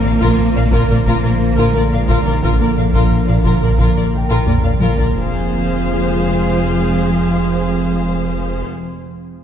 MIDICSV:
0, 0, Header, 1, 12, 480
1, 0, Start_track
1, 0, Tempo, 681818
1, 1704, Time_signature, 4, 2, 24, 8
1, 6644, End_track
2, 0, Start_track
2, 0, Title_t, "Felt piano"
2, 0, Program_c, 0, 0
2, 0, Control_c, 0, 64, 127
2, 2925, Note_on_c, 0, 79, 28
2, 3606, Note_off_c, 0, 79, 0
2, 3638, Control_c, 0, 64, 0
2, 3736, Control_c, 0, 64, 127
2, 5557, Control_c, 0, 64, 0
2, 6644, End_track
3, 0, Start_track
3, 0, Title_t, "Violin section"
3, 0, Program_c, 1, 48
3, 40, Note_on_c, 1, 77, 44
3, 85, Note_off_c, 1, 77, 0
3, 150, Note_on_c, 1, 70, 58
3, 259, Note_off_c, 1, 70, 0
3, 399, Note_on_c, 1, 77, 44
3, 444, Note_off_c, 1, 77, 0
3, 517, Note_on_c, 1, 70, 53
3, 623, Note_off_c, 1, 70, 0
3, 643, Note_on_c, 1, 74, 34
3, 688, Note_off_c, 1, 74, 0
3, 756, Note_on_c, 1, 70, 45
3, 862, Note_off_c, 1, 70, 0
3, 876, Note_on_c, 1, 74, 42
3, 922, Note_off_c, 1, 74, 0
3, 1114, Note_on_c, 1, 70, 43
3, 1221, Note_off_c, 1, 70, 0
3, 1236, Note_on_c, 1, 74, 43
3, 1282, Note_off_c, 1, 74, 0
3, 1362, Note_on_c, 1, 77, 39
3, 1407, Note_off_c, 1, 77, 0
3, 1476, Note_on_c, 1, 70, 51
3, 1582, Note_off_c, 1, 70, 0
3, 1602, Note_on_c, 1, 74, 38
3, 1647, Note_off_c, 1, 74, 0
3, 1718, Note_on_c, 1, 70, 42
3, 1823, Note_off_c, 1, 70, 0
3, 1846, Note_on_c, 1, 74, 31
3, 1890, Note_off_c, 1, 74, 0
3, 1952, Note_on_c, 1, 77, 32
3, 1998, Note_off_c, 1, 77, 0
3, 2073, Note_on_c, 1, 70, 43
3, 2181, Note_off_c, 1, 70, 0
3, 2314, Note_on_c, 1, 77, 31
3, 2360, Note_off_c, 1, 77, 0
3, 2435, Note_on_c, 1, 70, 40
3, 2542, Note_off_c, 1, 70, 0
3, 2559, Note_on_c, 1, 74, 30
3, 2604, Note_off_c, 1, 74, 0
3, 2677, Note_on_c, 1, 70, 41
3, 2783, Note_off_c, 1, 70, 0
3, 2795, Note_on_c, 1, 74, 31
3, 2841, Note_off_c, 1, 74, 0
3, 3028, Note_on_c, 1, 70, 51
3, 3138, Note_off_c, 1, 70, 0
3, 3146, Note_on_c, 1, 74, 30
3, 3193, Note_off_c, 1, 74, 0
3, 3266, Note_on_c, 1, 77, 39
3, 3314, Note_off_c, 1, 77, 0
3, 3378, Note_on_c, 1, 70, 42
3, 3492, Note_off_c, 1, 70, 0
3, 3501, Note_on_c, 1, 74, 33
3, 3550, Note_off_c, 1, 74, 0
3, 3616, Note_on_c, 1, 77, 43
3, 6075, Note_off_c, 1, 77, 0
3, 6644, End_track
4, 0, Start_track
4, 0, Title_t, "Viola section"
4, 0, Program_c, 2, 48
4, 22, Note_on_c, 2, 70, 35
4, 71, Note_off_c, 2, 70, 0
4, 136, Note_on_c, 2, 70, 54
4, 251, Note_off_c, 2, 70, 0
4, 385, Note_on_c, 2, 70, 38
4, 433, Note_off_c, 2, 70, 0
4, 504, Note_on_c, 2, 70, 53
4, 616, Note_off_c, 2, 70, 0
4, 624, Note_on_c, 2, 70, 40
4, 672, Note_off_c, 2, 70, 0
4, 745, Note_on_c, 2, 70, 43
4, 856, Note_off_c, 2, 70, 0
4, 869, Note_on_c, 2, 70, 37
4, 916, Note_off_c, 2, 70, 0
4, 1104, Note_on_c, 2, 70, 51
4, 1216, Note_off_c, 2, 70, 0
4, 1227, Note_on_c, 2, 70, 37
4, 1275, Note_off_c, 2, 70, 0
4, 1352, Note_on_c, 2, 70, 40
4, 1398, Note_off_c, 2, 70, 0
4, 1465, Note_on_c, 2, 70, 55
4, 1577, Note_off_c, 2, 70, 0
4, 1588, Note_on_c, 2, 70, 36
4, 1635, Note_off_c, 2, 70, 0
4, 1708, Note_on_c, 2, 70, 46
4, 1818, Note_off_c, 2, 70, 0
4, 1830, Note_on_c, 2, 70, 38
4, 1877, Note_off_c, 2, 70, 0
4, 1951, Note_on_c, 2, 70, 34
4, 1998, Note_off_c, 2, 70, 0
4, 2074, Note_on_c, 2, 70, 50
4, 2181, Note_off_c, 2, 70, 0
4, 2310, Note_on_c, 2, 70, 32
4, 2357, Note_off_c, 2, 70, 0
4, 2428, Note_on_c, 2, 70, 48
4, 2538, Note_off_c, 2, 70, 0
4, 2547, Note_on_c, 2, 70, 31
4, 2595, Note_off_c, 2, 70, 0
4, 2667, Note_on_c, 2, 70, 37
4, 2777, Note_off_c, 2, 70, 0
4, 2790, Note_on_c, 2, 70, 35
4, 2837, Note_off_c, 2, 70, 0
4, 3025, Note_on_c, 2, 70, 49
4, 3136, Note_off_c, 2, 70, 0
4, 3150, Note_on_c, 2, 70, 30
4, 3197, Note_off_c, 2, 70, 0
4, 3270, Note_on_c, 2, 70, 40
4, 3317, Note_off_c, 2, 70, 0
4, 3391, Note_on_c, 2, 70, 41
4, 3497, Note_off_c, 2, 70, 0
4, 3505, Note_on_c, 2, 70, 36
4, 3553, Note_off_c, 2, 70, 0
4, 3633, Note_on_c, 2, 68, 52
4, 6084, Note_off_c, 2, 68, 0
4, 6644, End_track
5, 0, Start_track
5, 0, Title_t, "Violin section"
5, 0, Program_c, 3, 48
5, 28, Note_on_c, 3, 74, 41
5, 75, Note_off_c, 3, 74, 0
5, 149, Note_on_c, 3, 65, 62
5, 259, Note_off_c, 3, 65, 0
5, 391, Note_on_c, 3, 74, 40
5, 438, Note_off_c, 3, 74, 0
5, 510, Note_on_c, 3, 65, 50
5, 619, Note_off_c, 3, 65, 0
5, 635, Note_on_c, 3, 70, 40
5, 680, Note_off_c, 3, 70, 0
5, 756, Note_on_c, 3, 65, 45
5, 862, Note_off_c, 3, 65, 0
5, 877, Note_on_c, 3, 70, 39
5, 922, Note_off_c, 3, 70, 0
5, 1114, Note_on_c, 3, 65, 49
5, 1221, Note_off_c, 3, 65, 0
5, 1233, Note_on_c, 3, 70, 41
5, 1279, Note_off_c, 3, 70, 0
5, 1350, Note_on_c, 3, 74, 45
5, 1397, Note_off_c, 3, 74, 0
5, 1470, Note_on_c, 3, 65, 52
5, 1579, Note_off_c, 3, 65, 0
5, 1592, Note_on_c, 3, 70, 41
5, 1638, Note_off_c, 3, 70, 0
5, 1717, Note_on_c, 3, 65, 43
5, 1823, Note_off_c, 3, 65, 0
5, 1829, Note_on_c, 3, 70, 26
5, 1876, Note_off_c, 3, 70, 0
5, 1948, Note_on_c, 3, 74, 31
5, 1995, Note_off_c, 3, 74, 0
5, 2071, Note_on_c, 3, 65, 47
5, 2180, Note_off_c, 3, 65, 0
5, 2308, Note_on_c, 3, 74, 29
5, 2355, Note_off_c, 3, 74, 0
5, 2426, Note_on_c, 3, 65, 40
5, 2537, Note_off_c, 3, 65, 0
5, 2548, Note_on_c, 3, 70, 32
5, 2595, Note_off_c, 3, 70, 0
5, 2668, Note_on_c, 3, 65, 39
5, 2778, Note_off_c, 3, 65, 0
5, 2797, Note_on_c, 3, 70, 33
5, 2842, Note_off_c, 3, 70, 0
5, 3030, Note_on_c, 3, 65, 47
5, 3139, Note_off_c, 3, 65, 0
5, 3159, Note_on_c, 3, 70, 34
5, 3204, Note_off_c, 3, 70, 0
5, 3276, Note_on_c, 3, 74, 34
5, 3322, Note_off_c, 3, 74, 0
5, 3392, Note_on_c, 3, 65, 42
5, 3500, Note_off_c, 3, 65, 0
5, 3511, Note_on_c, 3, 70, 34
5, 3558, Note_off_c, 3, 70, 0
5, 3636, Note_on_c, 3, 72, 47
5, 6085, Note_off_c, 3, 72, 0
5, 6644, End_track
6, 0, Start_track
6, 0, Title_t, "Ambient pad"
6, 0, Program_c, 4, 92
6, 0, Note_on_c, 4, 50, 59
6, 0, Note_on_c, 4, 53, 60
6, 0, Note_on_c, 4, 58, 65
6, 0, Note_on_c, 4, 70, 66
6, 3598, Note_off_c, 4, 70, 0
6, 3599, Note_off_c, 4, 58, 0
6, 3608, Note_off_c, 4, 53, 0
6, 3611, Note_on_c, 4, 72, 60
6, 3615, Note_on_c, 4, 56, 63
6, 3617, Note_on_c, 4, 53, 59
6, 3617, Note_on_c, 4, 60, 66
6, 3627, Note_off_c, 4, 50, 0
6, 6073, Note_off_c, 4, 72, 0
6, 6075, Note_off_c, 4, 56, 0
6, 6076, Note_off_c, 4, 53, 0
6, 6076, Note_off_c, 4, 60, 0
6, 6644, End_track
7, 0, Start_track
7, 0, Title_t, "Cello section"
7, 0, Program_c, 5, 48
7, 0, Note_on_c, 5, 58, 74
7, 725, Note_off_c, 5, 58, 0
7, 747, Note_on_c, 5, 58, 69
7, 1216, Note_off_c, 5, 58, 0
7, 1228, Note_on_c, 5, 53, 58
7, 1386, Note_off_c, 5, 53, 0
7, 1398, Note_on_c, 5, 56, 57
7, 1548, Note_off_c, 5, 56, 0
7, 1557, Note_on_c, 5, 55, 47
7, 1707, Note_on_c, 5, 53, 50
7, 1711, Note_off_c, 5, 55, 0
7, 3146, Note_off_c, 5, 53, 0
7, 3622, Note_on_c, 5, 53, 56
7, 6078, Note_off_c, 5, 53, 0
7, 6644, End_track
8, 0, Start_track
8, 0, Title_t, "French horn section"
8, 0, Program_c, 6, 60
8, 0, Note_on_c, 6, 53, 78
8, 725, Note_off_c, 6, 53, 0
8, 750, Note_on_c, 6, 53, 56
8, 1218, Note_off_c, 6, 53, 0
8, 1233, Note_on_c, 6, 50, 48
8, 1389, Note_off_c, 6, 50, 0
8, 1403, Note_on_c, 6, 53, 49
8, 1554, Note_off_c, 6, 53, 0
8, 1564, Note_on_c, 6, 51, 40
8, 1711, Note_off_c, 6, 51, 0
8, 1714, Note_on_c, 6, 50, 46
8, 3149, Note_off_c, 6, 50, 0
8, 3622, Note_on_c, 6, 65, 55
8, 6078, Note_off_c, 6, 65, 0
8, 6644, End_track
9, 0, Start_track
9, 0, Title_t, "Analog synth bass"
9, 0, Program_c, 7, 38
9, 37, Note_on_c, 7, 46, 57
9, 105, Note_off_c, 7, 46, 0
9, 161, Note_on_c, 7, 46, 77
9, 228, Note_off_c, 7, 46, 0
9, 280, Note_on_c, 7, 46, 57
9, 347, Note_off_c, 7, 46, 0
9, 402, Note_on_c, 7, 46, 57
9, 469, Note_off_c, 7, 46, 0
9, 524, Note_on_c, 7, 46, 76
9, 590, Note_off_c, 7, 46, 0
9, 646, Note_on_c, 7, 46, 52
9, 711, Note_off_c, 7, 46, 0
9, 758, Note_on_c, 7, 46, 69
9, 826, Note_off_c, 7, 46, 0
9, 878, Note_on_c, 7, 46, 48
9, 946, Note_off_c, 7, 46, 0
9, 996, Note_on_c, 7, 46, 55
9, 1064, Note_off_c, 7, 46, 0
9, 1114, Note_on_c, 7, 46, 69
9, 1183, Note_off_c, 7, 46, 0
9, 1242, Note_on_c, 7, 58, 40
9, 1309, Note_off_c, 7, 58, 0
9, 1363, Note_on_c, 7, 46, 54
9, 1429, Note_off_c, 7, 46, 0
9, 1481, Note_on_c, 7, 46, 70
9, 1548, Note_off_c, 7, 46, 0
9, 1596, Note_on_c, 7, 46, 56
9, 1665, Note_off_c, 7, 46, 0
9, 1718, Note_on_c, 7, 46, 68
9, 1786, Note_off_c, 7, 46, 0
9, 1838, Note_on_c, 7, 58, 40
9, 1906, Note_off_c, 7, 58, 0
9, 1956, Note_on_c, 7, 46, 55
9, 2025, Note_off_c, 7, 46, 0
9, 2076, Note_on_c, 7, 46, 67
9, 2145, Note_off_c, 7, 46, 0
9, 2194, Note_on_c, 7, 46, 53
9, 2263, Note_off_c, 7, 46, 0
9, 2316, Note_on_c, 7, 46, 52
9, 2384, Note_off_c, 7, 46, 0
9, 2433, Note_on_c, 7, 46, 62
9, 2502, Note_off_c, 7, 46, 0
9, 2553, Note_on_c, 7, 46, 54
9, 2622, Note_off_c, 7, 46, 0
9, 2672, Note_on_c, 7, 46, 65
9, 2742, Note_off_c, 7, 46, 0
9, 2795, Note_on_c, 7, 46, 43
9, 2864, Note_off_c, 7, 46, 0
9, 2915, Note_on_c, 7, 46, 43
9, 2984, Note_off_c, 7, 46, 0
9, 3031, Note_on_c, 7, 46, 74
9, 3101, Note_off_c, 7, 46, 0
9, 3152, Note_on_c, 7, 58, 46
9, 3222, Note_off_c, 7, 58, 0
9, 3270, Note_on_c, 7, 46, 50
9, 3340, Note_off_c, 7, 46, 0
9, 3384, Note_on_c, 7, 46, 67
9, 3456, Note_off_c, 7, 46, 0
9, 3510, Note_on_c, 7, 46, 50
9, 3580, Note_off_c, 7, 46, 0
9, 6644, End_track
10, 0, Start_track
10, 0, Title_t, "Double bass section"
10, 0, Program_c, 8, 48
10, 33, Note_on_c, 8, 34, 50
10, 79, Note_off_c, 8, 34, 0
10, 152, Note_on_c, 8, 34, 57
10, 198, Note_off_c, 8, 34, 0
10, 390, Note_on_c, 8, 34, 40
10, 437, Note_off_c, 8, 34, 0
10, 514, Note_on_c, 8, 34, 55
10, 560, Note_off_c, 8, 34, 0
10, 634, Note_on_c, 8, 34, 40
10, 680, Note_off_c, 8, 34, 0
10, 754, Note_on_c, 8, 34, 51
10, 800, Note_off_c, 8, 34, 0
10, 874, Note_on_c, 8, 34, 45
10, 920, Note_off_c, 8, 34, 0
10, 1112, Note_on_c, 8, 34, 53
10, 1158, Note_off_c, 8, 34, 0
10, 1238, Note_on_c, 8, 34, 39
10, 1284, Note_off_c, 8, 34, 0
10, 1361, Note_on_c, 8, 34, 36
10, 1405, Note_off_c, 8, 34, 0
10, 1477, Note_on_c, 8, 34, 53
10, 1523, Note_off_c, 8, 34, 0
10, 1596, Note_on_c, 8, 34, 35
10, 1642, Note_off_c, 8, 34, 0
10, 1711, Note_on_c, 8, 34, 45
10, 1758, Note_off_c, 8, 34, 0
10, 1832, Note_on_c, 8, 34, 33
10, 1879, Note_off_c, 8, 34, 0
10, 1955, Note_on_c, 8, 34, 36
10, 2001, Note_off_c, 8, 34, 0
10, 2076, Note_on_c, 8, 34, 45
10, 2122, Note_off_c, 8, 34, 0
10, 2314, Note_on_c, 8, 34, 31
10, 2360, Note_off_c, 8, 34, 0
10, 2432, Note_on_c, 8, 34, 48
10, 2479, Note_off_c, 8, 34, 0
10, 2553, Note_on_c, 8, 34, 32
10, 2599, Note_off_c, 8, 34, 0
10, 2670, Note_on_c, 8, 34, 41
10, 2717, Note_off_c, 8, 34, 0
10, 2791, Note_on_c, 8, 34, 35
10, 2838, Note_off_c, 8, 34, 0
10, 3031, Note_on_c, 8, 34, 46
10, 3077, Note_off_c, 8, 34, 0
10, 3148, Note_on_c, 8, 34, 35
10, 3195, Note_off_c, 8, 34, 0
10, 3275, Note_on_c, 8, 34, 28
10, 3321, Note_off_c, 8, 34, 0
10, 3387, Note_on_c, 8, 34, 44
10, 3435, Note_off_c, 8, 34, 0
10, 3510, Note_on_c, 8, 34, 31
10, 3557, Note_off_c, 8, 34, 0
10, 3625, Note_on_c, 8, 29, 47
10, 6080, Note_off_c, 8, 29, 0
10, 6644, End_track
11, 0, Start_track
11, 0, Title_t, "Sub bass"
11, 0, Program_c, 10, 38
11, 0, Note_on_c, 10, 34, 62
11, 3622, Note_off_c, 10, 34, 0
11, 3626, Note_on_c, 10, 29, 61
11, 6080, Note_off_c, 10, 29, 0
11, 6644, End_track
12, 0, Start_track
12, 0, Title_t, "Taiko and cinematic ensemble drums"
12, 149, Note_on_c, 9, 41, 64
12, 219, Note_off_c, 9, 41, 0
12, 509, Note_on_c, 9, 41, 75
12, 579, Note_off_c, 9, 41, 0
12, 747, Note_on_c, 9, 41, 66
12, 817, Note_off_c, 9, 41, 0
12, 1469, Note_on_c, 9, 41, 63
12, 1539, Note_off_c, 9, 41, 0
12, 1707, Note_on_c, 9, 41, 68
12, 1778, Note_off_c, 9, 41, 0
12, 2064, Note_on_c, 9, 41, 56
12, 2135, Note_off_c, 9, 41, 0
12, 2425, Note_on_c, 9, 41, 67
12, 2495, Note_off_c, 9, 41, 0
12, 2663, Note_on_c, 9, 41, 64
12, 2734, Note_off_c, 9, 41, 0
12, 3144, Note_on_c, 9, 45, 74
12, 3214, Note_off_c, 9, 45, 0
12, 3264, Note_on_c, 9, 45, 68
12, 3334, Note_off_c, 9, 45, 0
12, 3384, Note_on_c, 9, 48, 75
12, 3454, Note_off_c, 9, 48, 0
12, 3503, Note_on_c, 9, 43, 69
12, 3574, Note_off_c, 9, 43, 0
12, 6644, End_track
0, 0, End_of_file